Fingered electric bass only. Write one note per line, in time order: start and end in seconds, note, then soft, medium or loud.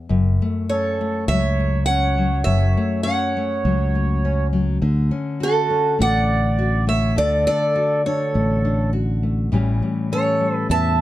0.10 0.39 F#1 medium
1.28 2.42 C#2 loud
2.46 2.74 F#1 loud
3.65 4.78 C#2 loud
4.82 5.10 D2 loud
6.00 7.14 A1 loud
7.18 7.46 D2 loud
8.35 9.49 A1 loud
9.53 9.81 A1 loud
10.70 11.01 E2 loud